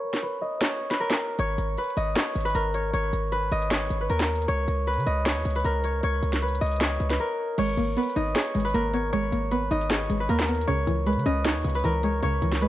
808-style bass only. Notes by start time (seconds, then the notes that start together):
1.39 G#1
1.58 G#1
1.97 G#1
2.35 G#1
2.55 G#1
2.94 G#1
3.13 G#1
3.52 G#1
3.90 G#1
4.10 D#2
4.48 C#2
4.68 C#2
4.97 C#3
5.06 C#2
5.36 D#2
5.45 C#2
5.65 C#2
6.03 C#2
6.23 C#2
6.61 C#2
7.00 C#2
7.58 G#1
7.77 G#1
8.16 G#1
8.55 G#1
8.74 G#1
9.13 G#1
9.32 G#1
9.71 G#1
10.10 G#1
10.29 D#2
10.68 C#2
10.87 C#2
11.17 C#3
11.26 C#2
11.55 D#2
11.65 C#2
11.84 C#2
12.23 C#2
12.42 C#2